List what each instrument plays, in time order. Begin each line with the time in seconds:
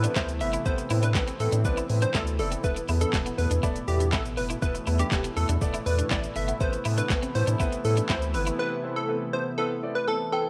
Already playing: analog synth pad C3 E3 A3 B3 E4, digital synth lead B4
0.04 clean electric guitar D4, closed hi-hat, shaker
0.16 analog synth bass D2, grand piano B3 C4 E4 A4 B4, clean electric guitar E4, digital synth lead C5, kick, snare, clap, shaker
0.29 closed hi-hat, shaker
0.41 analog synth bass G1, grand piano B3 C4 E4 A4 B4, digital synth lead E5, muted clean electric guitar stroke, open hi-hat, shaker
0.53 clean electric guitar E4, closed hi-hat, shaker
0.65 analog synth bass A1, grand piano B3 C4 E4 A4 B4, analog synth pad C4, digital synth lead C5, kick, shaker
0.78 muted clean electric guitar stroke, closed hi-hat, shaker
0.90 analog synth bass A2, grand piano B3 C4 E4 A4 B4, clean electric guitar E4, open hi-hat, shaker
1.03 clean electric guitar D4, digital synth lead B4, closed hi-hat, shaker
1.15 analog synth bass A1, grand piano B3 C4 E4 A4 B4, kick, snare, clap, shaker
1.28 clean electric guitar C4, closed hi-hat, shaker
1.40 analog synth bass A2, grand piano B3 C4 E4 A4 B4, digital synth lead A4, muted clean electric guitar stroke, open hi-hat, shaker
1.52 analog synth bass A2, clean electric guitar D4, closed hi-hat, shaker
1.65 analog synth bass A1, grand piano B3 C4 E4 A4 D5, digital synth lead B4, kick, shaker
1.77 clean electric guitar E4, closed hi-hat, shaker
1.90 analog synth bass A2, grand piano B3 C4 E4 A4 B4, muted clean electric guitar stroke, open hi-hat, shaker
2.02 clean electric guitar D4, digital synth lead C5, closed hi-hat, shaker
2.14 analog synth bass D2, grand piano B3 C4 E4 A4 D5, clean electric guitar E4, digital synth lead A4, kick, snare, clap, shaker
2.27 closed hi-hat, shaker
2.39 analog synth bass F1, grand piano B3 C4 E4 A4 D5, digital synth lead A4, muted clean electric guitar stroke, open hi-hat, shaker
2.52 clean electric guitar C4, closed hi-hat, shaker
2.64 analog synth bass E1, analog synth pad A2 B2 B3, grand piano A3 B3 E4 A4 B4, digital synth lead B4, kick, shaker
2.76 muted clean electric guitar stroke, closed hi-hat, shaker
2.88 analog synth bass E2, grand piano A3 B3 E4 A4 B4, clean electric guitar E4, open hi-hat, shaker
3.01 clean electric guitar D4, digital synth lead A4, closed hi-hat, shaker
3.13 analog synth bass E1, grand piano A3 B3 E4 A4 B4, kick, snare, clap, shaker
3.26 clean electric guitar B3, closed hi-hat, shaker
3.38 analog synth bass E2, grand piano A3 B3 E4 A4 B4, digital synth lead B4, muted clean electric guitar stroke, open hi-hat, shaker
3.51 analog synth bass E2, clean electric guitar D4, closed hi-hat, shaker
3.63 analog synth bass E1, grand piano A3 B3 E4 A4 D5, clean electric guitar E4, kick, shaker
3.76 muted clean electric guitar stroke, closed hi-hat, shaker
3.88 analog synth bass E2, grand piano A3 B3 E4 A4 D5, digital synth lead G4, open hi-hat, shaker
4.00 clean electric guitar D4, closed hi-hat, shaker
4.13 analog synth bass A1, grand piano A3 B3 E4 A4 B4, clean electric guitar E4, digital synth lead A4, kick, snare, clap, shaker
4.25 closed hi-hat, shaker
4.37 analog synth bass F1, grand piano A3 B3 E4 A4 B4, digital synth lead B4, muted clean electric guitar stroke, open hi-hat, shaker
4.50 clean electric guitar E4, closed hi-hat, shaker
4.62 analog synth bass E1, grand piano A3 B3 E4 A4 B4, analog synth pad A3, digital synth lead B4, kick, shaker
4.75 muted clean electric guitar stroke, closed hi-hat, shaker
4.87 analog synth bass E2, grand piano A3 B3 E4 A4 B4, clean electric guitar E4, open hi-hat, shaker
4.99 clean electric guitar D4, digital synth lead G4, closed hi-hat, shaker
5.11 analog synth bass E1, grand piano A3 B3 E4 A4 B4, kick, snare, clap, shaker
5.24 clean electric guitar B3, closed hi-hat, shaker
5.37 analog synth bass E2, grand piano A3 B3 E4 A4 B4, digital synth lead A4, muted clean electric guitar stroke, open hi-hat, shaker
5.49 analog synth bass E2, clean electric guitar D4, closed hi-hat, shaker
5.61 analog synth bass E1, grand piano A3 B3 E4 A4 D5, kick, shaker
5.74 clean electric guitar E4, closed hi-hat, shaker
5.86 analog synth bass E2, grand piano A3 B3 E4 A4 D5, digital synth lead B4, muted clean electric guitar stroke, open hi-hat, shaker
5.99 clean electric guitar D4, closed hi-hat, shaker
6.11 analog synth bass A1, grand piano A3 B3 E4 A4 B4, clean electric guitar E4, digital synth lead D5, kick, snare, clap, shaker
6.24 closed hi-hat, shaker
6.36 analog synth bass G1, grand piano A3 B3 E4 A4 B4, digital synth lead E5, muted clean electric guitar stroke, open hi-hat, shaker
6.48 clean electric guitar B3, closed hi-hat, shaker
6.60 analog synth bass A1, analog synth pad C3 E3 B3 E4, grand piano B3 C4 E4 A4 B4, digital synth lead C5, kick, shaker
6.73 muted clean electric guitar stroke, closed hi-hat, shaker
6.85 analog synth bass A2, grand piano B3 C4 E4 A4 B4, clean electric guitar E4, open hi-hat, shaker
6.98 clean electric guitar D4, digital synth lead B4, closed hi-hat, shaker
7.10 analog synth bass A1, grand piano B3 C4 E4 A4 B4, kick, snare, clap, shaker
7.22 clean electric guitar C4, closed hi-hat, shaker
7.35 analog synth bass A2, grand piano B3 C4 E4 A4 B4, digital synth lead C5, muted clean electric guitar stroke, open hi-hat, shaker
7.47 analog synth bass A2, clean electric guitar D4, closed hi-hat, shaker
7.60 analog synth bass A1, grand piano B3 C4 E4 A4 B4, clean electric guitar E4, kick, shaker
7.72 muted clean electric guitar stroke, closed hi-hat, shaker
7.84 analog synth bass A2, grand piano B3 C4 E4 A4 B4, digital synth lead A4, open hi-hat, shaker
7.97 clean electric guitar D4, closed hi-hat, shaker
8.09 analog synth bass D2, grand piano B3 C4 E4 A4 B4, clean electric guitar E4, digital synth lead C5, kick, snare, clap, shaker
8.22 closed hi-hat, shaker
8.34 analog synth bass G1, grand piano B3 C4 E4 A4 B4, digital synth lead B4, muted clean electric guitar stroke, open hi-hat, shaker
8.47 clean electric guitar E4, closed hi-hat, shaker
8.59 grand piano B3 C4 E4 A4 B4, digital synth lead B4
8.83 grand piano B3 C4 E4 A4 C5
8.96 digital synth lead A4
9.08 grand piano B3 C4 E4 A4 B4
9.33 grand piano B3 C4 E4 A4 C5, digital synth lead C5
9.58 grand piano B3 C4 E4 A4 B4, digital synth lead A4
9.83 grand piano B3 C4 E4 A4 D5
9.95 digital synth lead B4
10.07 grand piano B3 C4 E4 A4 B4, digital synth lead A4, synth bell A5
10.32 grand piano B3 C4 E4 A4 B4, digital synth lead A4, synth bell G5